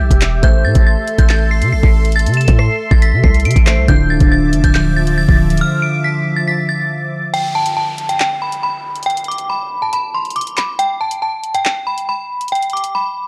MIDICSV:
0, 0, Header, 1, 7, 480
1, 0, Start_track
1, 0, Tempo, 431655
1, 478, Time_signature, 4, 2, 24, 8
1, 14762, End_track
2, 0, Start_track
2, 0, Title_t, "Synth bell"
2, 0, Program_c, 0, 98
2, 0, Note_on_c, 0, 91, 76
2, 437, Note_off_c, 0, 91, 0
2, 486, Note_on_c, 0, 91, 110
2, 688, Note_off_c, 0, 91, 0
2, 719, Note_on_c, 0, 93, 94
2, 925, Note_off_c, 0, 93, 0
2, 963, Note_on_c, 0, 93, 85
2, 1299, Note_off_c, 0, 93, 0
2, 1320, Note_on_c, 0, 91, 69
2, 1422, Note_off_c, 0, 91, 0
2, 1442, Note_on_c, 0, 93, 88
2, 1646, Note_off_c, 0, 93, 0
2, 1680, Note_on_c, 0, 96, 83
2, 1885, Note_off_c, 0, 96, 0
2, 1918, Note_on_c, 0, 96, 84
2, 2124, Note_off_c, 0, 96, 0
2, 2398, Note_on_c, 0, 93, 102
2, 2604, Note_off_c, 0, 93, 0
2, 2636, Note_on_c, 0, 100, 88
2, 2843, Note_off_c, 0, 100, 0
2, 2880, Note_on_c, 0, 96, 92
2, 3218, Note_off_c, 0, 96, 0
2, 3238, Note_on_c, 0, 93, 81
2, 3341, Note_off_c, 0, 93, 0
2, 3360, Note_on_c, 0, 95, 100
2, 3565, Note_off_c, 0, 95, 0
2, 3600, Note_on_c, 0, 96, 80
2, 3805, Note_off_c, 0, 96, 0
2, 3840, Note_on_c, 0, 98, 89
2, 4045, Note_off_c, 0, 98, 0
2, 4076, Note_on_c, 0, 96, 81
2, 4283, Note_off_c, 0, 96, 0
2, 4319, Note_on_c, 0, 91, 102
2, 4525, Note_off_c, 0, 91, 0
2, 4561, Note_on_c, 0, 93, 84
2, 4766, Note_off_c, 0, 93, 0
2, 4799, Note_on_c, 0, 93, 85
2, 5137, Note_off_c, 0, 93, 0
2, 5160, Note_on_c, 0, 91, 83
2, 5262, Note_off_c, 0, 91, 0
2, 5279, Note_on_c, 0, 91, 99
2, 5484, Note_off_c, 0, 91, 0
2, 5521, Note_on_c, 0, 93, 86
2, 5726, Note_off_c, 0, 93, 0
2, 5756, Note_on_c, 0, 93, 96
2, 5963, Note_off_c, 0, 93, 0
2, 6241, Note_on_c, 0, 89, 95
2, 6446, Note_off_c, 0, 89, 0
2, 6475, Note_on_c, 0, 98, 84
2, 6682, Note_off_c, 0, 98, 0
2, 6720, Note_on_c, 0, 95, 82
2, 7058, Note_off_c, 0, 95, 0
2, 7077, Note_on_c, 0, 93, 77
2, 7181, Note_off_c, 0, 93, 0
2, 7201, Note_on_c, 0, 95, 81
2, 7406, Note_off_c, 0, 95, 0
2, 7437, Note_on_c, 0, 93, 79
2, 8114, Note_off_c, 0, 93, 0
2, 8157, Note_on_c, 0, 79, 99
2, 8364, Note_off_c, 0, 79, 0
2, 8397, Note_on_c, 0, 81, 93
2, 8603, Note_off_c, 0, 81, 0
2, 8637, Note_on_c, 0, 81, 84
2, 8976, Note_off_c, 0, 81, 0
2, 8998, Note_on_c, 0, 79, 71
2, 9101, Note_off_c, 0, 79, 0
2, 9122, Note_on_c, 0, 79, 89
2, 9326, Note_off_c, 0, 79, 0
2, 9361, Note_on_c, 0, 83, 72
2, 9566, Note_off_c, 0, 83, 0
2, 9599, Note_on_c, 0, 83, 81
2, 9804, Note_off_c, 0, 83, 0
2, 10075, Note_on_c, 0, 79, 101
2, 10283, Note_off_c, 0, 79, 0
2, 10323, Note_on_c, 0, 86, 89
2, 10527, Note_off_c, 0, 86, 0
2, 10559, Note_on_c, 0, 83, 82
2, 10897, Note_off_c, 0, 83, 0
2, 10921, Note_on_c, 0, 81, 75
2, 11023, Note_off_c, 0, 81, 0
2, 11044, Note_on_c, 0, 83, 90
2, 11248, Note_off_c, 0, 83, 0
2, 11281, Note_on_c, 0, 84, 74
2, 11486, Note_off_c, 0, 84, 0
2, 11518, Note_on_c, 0, 86, 84
2, 11724, Note_off_c, 0, 86, 0
2, 11759, Note_on_c, 0, 83, 74
2, 11965, Note_off_c, 0, 83, 0
2, 11998, Note_on_c, 0, 79, 100
2, 12204, Note_off_c, 0, 79, 0
2, 12239, Note_on_c, 0, 81, 85
2, 12444, Note_off_c, 0, 81, 0
2, 12478, Note_on_c, 0, 81, 86
2, 12817, Note_off_c, 0, 81, 0
2, 12839, Note_on_c, 0, 79, 89
2, 12942, Note_off_c, 0, 79, 0
2, 12960, Note_on_c, 0, 79, 97
2, 13165, Note_off_c, 0, 79, 0
2, 13196, Note_on_c, 0, 83, 86
2, 13403, Note_off_c, 0, 83, 0
2, 13442, Note_on_c, 0, 83, 89
2, 13646, Note_off_c, 0, 83, 0
2, 13923, Note_on_c, 0, 79, 90
2, 14127, Note_off_c, 0, 79, 0
2, 14159, Note_on_c, 0, 86, 86
2, 14364, Note_off_c, 0, 86, 0
2, 14399, Note_on_c, 0, 83, 85
2, 14737, Note_off_c, 0, 83, 0
2, 14762, End_track
3, 0, Start_track
3, 0, Title_t, "Analog synth pad"
3, 0, Program_c, 1, 89
3, 0, Note_on_c, 1, 67, 80
3, 0, Note_on_c, 1, 76, 77
3, 0, Note_on_c, 1, 86, 86
3, 434, Note_off_c, 1, 67, 0
3, 434, Note_off_c, 1, 86, 0
3, 478, Note_on_c, 1, 69, 82
3, 478, Note_on_c, 1, 84, 88
3, 4274, Note_off_c, 1, 76, 0
3, 4280, Note_off_c, 1, 69, 0
3, 4280, Note_off_c, 1, 84, 0
3, 4319, Note_on_c, 1, 53, 84
3, 4319, Note_on_c, 1, 76, 73
3, 4319, Note_on_c, 1, 86, 89
3, 8120, Note_off_c, 1, 53, 0
3, 8120, Note_off_c, 1, 76, 0
3, 8120, Note_off_c, 1, 86, 0
3, 14762, End_track
4, 0, Start_track
4, 0, Title_t, "Harp"
4, 0, Program_c, 2, 46
4, 0, Note_on_c, 2, 52, 69
4, 0, Note_on_c, 2, 59, 60
4, 0, Note_on_c, 2, 62, 64
4, 0, Note_on_c, 2, 67, 73
4, 433, Note_off_c, 2, 59, 0
4, 436, Note_off_c, 2, 62, 0
4, 440, Note_off_c, 2, 67, 0
4, 463, Note_on_c, 2, 57, 68
4, 471, Note_on_c, 2, 69, 63
4, 478, Note_on_c, 2, 72, 64
4, 486, Note_on_c, 2, 76, 73
4, 534, Note_off_c, 2, 52, 0
4, 4030, Note_off_c, 2, 69, 0
4, 4034, Note_off_c, 2, 72, 0
4, 4038, Note_off_c, 2, 76, 0
4, 4058, Note_off_c, 2, 57, 0
4, 4063, Note_on_c, 2, 57, 52
4, 4070, Note_on_c, 2, 69, 47
4, 4070, Note_on_c, 2, 72, 48
4, 4078, Note_on_c, 2, 76, 57
4, 4312, Note_off_c, 2, 57, 0
4, 4313, Note_off_c, 2, 69, 0
4, 4315, Note_off_c, 2, 72, 0
4, 4316, Note_on_c, 2, 50, 69
4, 4317, Note_off_c, 2, 76, 0
4, 4323, Note_on_c, 2, 62, 65
4, 4331, Note_on_c, 2, 64, 61
4, 4338, Note_on_c, 2, 65, 80
4, 8116, Note_off_c, 2, 62, 0
4, 8120, Note_off_c, 2, 64, 0
4, 8124, Note_off_c, 2, 65, 0
4, 8214, Note_off_c, 2, 50, 0
4, 14762, End_track
5, 0, Start_track
5, 0, Title_t, "808-style bass"
5, 0, Program_c, 3, 38
5, 0, Note_on_c, 3, 35, 98
5, 113, Note_off_c, 3, 35, 0
5, 118, Note_on_c, 3, 28, 105
5, 464, Note_off_c, 3, 28, 0
5, 478, Note_on_c, 3, 33, 112
5, 719, Note_on_c, 3, 45, 105
5, 735, Note_off_c, 3, 33, 0
5, 833, Note_off_c, 3, 45, 0
5, 839, Note_on_c, 3, 33, 102
5, 1069, Note_off_c, 3, 33, 0
5, 1317, Note_on_c, 3, 33, 111
5, 1798, Note_on_c, 3, 48, 100
5, 1815, Note_off_c, 3, 33, 0
5, 1919, Note_on_c, 3, 33, 100
5, 1935, Note_off_c, 3, 48, 0
5, 2033, Note_off_c, 3, 33, 0
5, 2039, Note_on_c, 3, 33, 112
5, 2519, Note_on_c, 3, 48, 103
5, 2535, Note_off_c, 3, 33, 0
5, 2747, Note_off_c, 3, 48, 0
5, 2759, Note_on_c, 3, 45, 102
5, 2989, Note_off_c, 3, 45, 0
5, 3238, Note_on_c, 3, 33, 111
5, 3478, Note_on_c, 3, 48, 101
5, 3495, Note_off_c, 3, 33, 0
5, 3593, Note_off_c, 3, 48, 0
5, 3599, Note_on_c, 3, 36, 110
5, 3838, Note_on_c, 3, 48, 100
5, 3855, Note_off_c, 3, 36, 0
5, 3952, Note_off_c, 3, 48, 0
5, 3959, Note_on_c, 3, 33, 112
5, 4198, Note_on_c, 3, 36, 104
5, 4215, Note_off_c, 3, 33, 0
5, 4313, Note_off_c, 3, 36, 0
5, 4319, Note_on_c, 3, 26, 116
5, 4664, Note_off_c, 3, 26, 0
5, 4679, Note_on_c, 3, 26, 105
5, 5038, Note_on_c, 3, 29, 104
5, 5055, Note_off_c, 3, 26, 0
5, 5153, Note_off_c, 3, 29, 0
5, 5158, Note_on_c, 3, 26, 107
5, 5849, Note_off_c, 3, 26, 0
5, 5878, Note_on_c, 3, 26, 113
5, 6239, Note_off_c, 3, 26, 0
5, 14762, End_track
6, 0, Start_track
6, 0, Title_t, "Downlifter"
6, 0, Program_c, 4, 103
6, 8159, Note_on_c, 4, 60, 83
6, 11999, Note_off_c, 4, 60, 0
6, 14762, End_track
7, 0, Start_track
7, 0, Title_t, "Drums"
7, 118, Note_on_c, 9, 36, 90
7, 123, Note_on_c, 9, 42, 80
7, 230, Note_off_c, 9, 36, 0
7, 234, Note_off_c, 9, 42, 0
7, 238, Note_on_c, 9, 39, 119
7, 239, Note_on_c, 9, 42, 87
7, 349, Note_off_c, 9, 39, 0
7, 351, Note_off_c, 9, 42, 0
7, 478, Note_on_c, 9, 36, 119
7, 479, Note_on_c, 9, 42, 83
7, 590, Note_off_c, 9, 36, 0
7, 590, Note_off_c, 9, 42, 0
7, 835, Note_on_c, 9, 42, 89
7, 839, Note_on_c, 9, 36, 112
7, 946, Note_off_c, 9, 42, 0
7, 950, Note_off_c, 9, 36, 0
7, 1196, Note_on_c, 9, 42, 81
7, 1307, Note_off_c, 9, 42, 0
7, 1318, Note_on_c, 9, 36, 95
7, 1318, Note_on_c, 9, 42, 97
7, 1429, Note_off_c, 9, 36, 0
7, 1429, Note_off_c, 9, 42, 0
7, 1439, Note_on_c, 9, 39, 120
7, 1550, Note_off_c, 9, 39, 0
7, 1798, Note_on_c, 9, 42, 83
7, 1909, Note_off_c, 9, 42, 0
7, 2038, Note_on_c, 9, 36, 88
7, 2150, Note_off_c, 9, 36, 0
7, 2279, Note_on_c, 9, 42, 74
7, 2359, Note_off_c, 9, 42, 0
7, 2359, Note_on_c, 9, 42, 71
7, 2438, Note_off_c, 9, 42, 0
7, 2438, Note_on_c, 9, 42, 73
7, 2518, Note_off_c, 9, 42, 0
7, 2518, Note_on_c, 9, 42, 68
7, 2598, Note_off_c, 9, 42, 0
7, 2598, Note_on_c, 9, 42, 71
7, 2679, Note_off_c, 9, 42, 0
7, 2679, Note_on_c, 9, 42, 72
7, 2755, Note_off_c, 9, 42, 0
7, 2755, Note_on_c, 9, 42, 87
7, 2759, Note_on_c, 9, 36, 107
7, 2866, Note_off_c, 9, 42, 0
7, 2870, Note_off_c, 9, 36, 0
7, 2878, Note_on_c, 9, 37, 89
7, 2989, Note_off_c, 9, 37, 0
7, 3238, Note_on_c, 9, 36, 97
7, 3349, Note_off_c, 9, 36, 0
7, 3360, Note_on_c, 9, 42, 82
7, 3471, Note_off_c, 9, 42, 0
7, 3599, Note_on_c, 9, 36, 97
7, 3710, Note_off_c, 9, 36, 0
7, 3719, Note_on_c, 9, 42, 47
7, 3778, Note_off_c, 9, 42, 0
7, 3778, Note_on_c, 9, 42, 58
7, 3839, Note_off_c, 9, 42, 0
7, 3839, Note_on_c, 9, 42, 68
7, 3899, Note_off_c, 9, 42, 0
7, 3899, Note_on_c, 9, 42, 78
7, 3959, Note_on_c, 9, 36, 88
7, 3963, Note_off_c, 9, 42, 0
7, 3963, Note_on_c, 9, 42, 81
7, 4070, Note_off_c, 9, 36, 0
7, 4074, Note_off_c, 9, 42, 0
7, 4078, Note_on_c, 9, 39, 117
7, 4080, Note_on_c, 9, 42, 87
7, 4189, Note_off_c, 9, 39, 0
7, 4191, Note_off_c, 9, 42, 0
7, 4319, Note_on_c, 9, 36, 121
7, 4319, Note_on_c, 9, 42, 82
7, 4430, Note_off_c, 9, 36, 0
7, 4430, Note_off_c, 9, 42, 0
7, 4675, Note_on_c, 9, 42, 91
7, 4679, Note_on_c, 9, 36, 111
7, 4786, Note_off_c, 9, 42, 0
7, 4790, Note_off_c, 9, 36, 0
7, 5036, Note_on_c, 9, 42, 80
7, 5147, Note_off_c, 9, 42, 0
7, 5158, Note_on_c, 9, 36, 100
7, 5158, Note_on_c, 9, 42, 97
7, 5269, Note_off_c, 9, 36, 0
7, 5269, Note_off_c, 9, 42, 0
7, 5279, Note_on_c, 9, 39, 120
7, 5390, Note_off_c, 9, 39, 0
7, 5638, Note_on_c, 9, 42, 85
7, 5749, Note_off_c, 9, 42, 0
7, 5878, Note_on_c, 9, 36, 89
7, 5990, Note_off_c, 9, 36, 0
7, 6119, Note_on_c, 9, 42, 69
7, 6199, Note_off_c, 9, 42, 0
7, 6199, Note_on_c, 9, 42, 71
7, 6310, Note_off_c, 9, 42, 0
7, 8159, Note_on_c, 9, 42, 81
7, 8270, Note_off_c, 9, 42, 0
7, 8515, Note_on_c, 9, 42, 83
7, 8626, Note_off_c, 9, 42, 0
7, 8876, Note_on_c, 9, 42, 82
7, 8987, Note_off_c, 9, 42, 0
7, 8998, Note_on_c, 9, 42, 93
7, 9109, Note_off_c, 9, 42, 0
7, 9119, Note_on_c, 9, 39, 111
7, 9230, Note_off_c, 9, 39, 0
7, 9478, Note_on_c, 9, 42, 82
7, 9589, Note_off_c, 9, 42, 0
7, 9958, Note_on_c, 9, 42, 69
7, 10038, Note_off_c, 9, 42, 0
7, 10038, Note_on_c, 9, 42, 72
7, 10118, Note_off_c, 9, 42, 0
7, 10118, Note_on_c, 9, 42, 70
7, 10198, Note_off_c, 9, 42, 0
7, 10198, Note_on_c, 9, 42, 69
7, 10278, Note_off_c, 9, 42, 0
7, 10278, Note_on_c, 9, 42, 68
7, 10359, Note_off_c, 9, 42, 0
7, 10359, Note_on_c, 9, 42, 70
7, 10435, Note_off_c, 9, 42, 0
7, 10435, Note_on_c, 9, 42, 86
7, 10546, Note_off_c, 9, 42, 0
7, 11040, Note_on_c, 9, 42, 82
7, 11151, Note_off_c, 9, 42, 0
7, 11399, Note_on_c, 9, 42, 46
7, 11459, Note_off_c, 9, 42, 0
7, 11459, Note_on_c, 9, 42, 58
7, 11519, Note_off_c, 9, 42, 0
7, 11519, Note_on_c, 9, 42, 67
7, 11578, Note_off_c, 9, 42, 0
7, 11578, Note_on_c, 9, 42, 75
7, 11643, Note_off_c, 9, 42, 0
7, 11643, Note_on_c, 9, 42, 78
7, 11754, Note_off_c, 9, 42, 0
7, 11758, Note_on_c, 9, 39, 115
7, 11760, Note_on_c, 9, 42, 84
7, 11869, Note_off_c, 9, 39, 0
7, 11871, Note_off_c, 9, 42, 0
7, 11999, Note_on_c, 9, 42, 83
7, 12110, Note_off_c, 9, 42, 0
7, 12355, Note_on_c, 9, 42, 89
7, 12467, Note_off_c, 9, 42, 0
7, 12716, Note_on_c, 9, 42, 78
7, 12827, Note_off_c, 9, 42, 0
7, 12838, Note_on_c, 9, 42, 95
7, 12949, Note_off_c, 9, 42, 0
7, 12959, Note_on_c, 9, 39, 115
7, 13070, Note_off_c, 9, 39, 0
7, 13318, Note_on_c, 9, 42, 81
7, 13429, Note_off_c, 9, 42, 0
7, 13799, Note_on_c, 9, 42, 72
7, 13879, Note_off_c, 9, 42, 0
7, 13879, Note_on_c, 9, 42, 71
7, 13959, Note_off_c, 9, 42, 0
7, 13959, Note_on_c, 9, 42, 69
7, 14039, Note_off_c, 9, 42, 0
7, 14039, Note_on_c, 9, 42, 68
7, 14119, Note_off_c, 9, 42, 0
7, 14119, Note_on_c, 9, 42, 68
7, 14199, Note_off_c, 9, 42, 0
7, 14199, Note_on_c, 9, 42, 70
7, 14275, Note_off_c, 9, 42, 0
7, 14275, Note_on_c, 9, 42, 87
7, 14387, Note_off_c, 9, 42, 0
7, 14762, End_track
0, 0, End_of_file